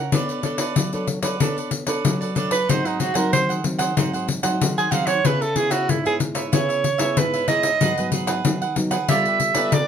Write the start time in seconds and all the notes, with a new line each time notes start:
Already playing: A#4 C#5 F#5
0.12 B3 D4 A4 B4 C#5 D5, pandeiro
0.29 A4 B4 D5, pandeiro
0.43 D4 A4 B4 C#5 D5, pandeiro
0.58 A4 B4 D5, pandeiro
0.76 F#3, pandeiro
0.93 D4 A4 B4 C#5 D5, pandeiro
1.07 muted cavaquinho stroke, pandeiro
1.22 D4 A4 B4 C#5 D5, pandeiro
1.40 B3 D4 A4 B4 C#5 D5, pandeiro
1.57 A4 B4 D5, pandeiro
1.71 muted cavaquinho stroke, pandeiro
1.86 D4 A4 B4 C#5 D5, pandeiro
2.05 F#3, pandeiro
2.21 A4 B4 D5, pandeiro
2.35 D4 A4 B4 C#5 D5, pandeiro
2.51 A4 B4 D5, pandeiro
2.69 G#2 F#3 C4 D#4 G#4 C5 F#5, pandeiro
2.85 D#4 G#4 C5 F#5, pandeiro
3.00 D#4 F#4 G#4 C5 F#5, pandeiro
3.14 F#3 C4 D#4 G#4 A#4 C5 F#5, pandeiro
3.33 D#3 C5, pandeiro
3.49 G#4 C5 F#5, pandeiro
3.64 F#3 C4 D#4, muted cavaquinho stroke, pandeiro
3.78 G#4 C5 F#5, pandeiro
3.97 G#2 F#3 C4 D#4 G#4 C5 F#5, pandeiro
4.13 G#4 C5 F#5, pandeiro
4.28 muted cavaquinho stroke, pandeiro
4.43 F#3 C4 D#4 G#4 C5 F#5, pandeiro
4.61 D#3, pandeiro
4.77 G#4 C5 F#5 G#5, pandeiro
4.91 F#3 C4 D#4 G#4 C5 F5 F#5, pandeiro
5.06 G#4 C5 C#5 F#5, pandeiro
5.25 C#3 B3 E4 G#4 B4 C#5 E5, pandeiro
5.41 A4 B4 C#5 E5, pandeiro
5.56 B3 E4 G#4 B4 C#5 E5, pandeiro
5.70 F#4 B4 C#5 E5, pandeiro
5.89 G#2 E4, pandeiro
6.05 B3 E4 G#4 B4 C#5 E5, pandeiro
6.20 muted cavaquinho stroke, pandeiro
6.35 B4 C#5 E5, pandeiro
6.52 C#3 B3 E4 G#4 B4 C#5 E5, pandeiro
6.69 B4 C#5 E5, pandeiro
6.84 muted cavaquinho stroke, pandeiro
6.98 B3 E4 G#4 B4 C#5 E5, pandeiro
7.17 G#2 B4, pandeiro
7.34 B4 C#5 E5, pandeiro
7.48 B3 E4 G#4 B4 C#5 D#5 E5, pandeiro
7.63 B4 C#5 E5, pandeiro
7.81 G#2 F#3 B3 D#4 G#4 B4 F#5, pandeiro
7.98 F#3 B3 D#4 G#4 B4 F#5, pandeiro
8.12 D#4 G#4 B4 F#5, pandeiro
8.27 G#4 B4 F#5, pandeiro
8.45 D#3 F#3 B3 D#4, pandeiro
8.61 G#4 B4 F#5, pandeiro
8.76 F#3 B3 D#4, muted cavaquinho stroke, pandeiro
8.91 G#4 B4 F#5, pandeiro
9.09 G3 B3 F4 G4 A4 B4 D5 E5, pandeiro
9.25 G4 B4 D5, pandeiro
9.40 muted cavaquinho stroke, pandeiro
9.55 B3 F4 G4 A4 B4 D5, pandeiro
9.72 D3 D5, pandeiro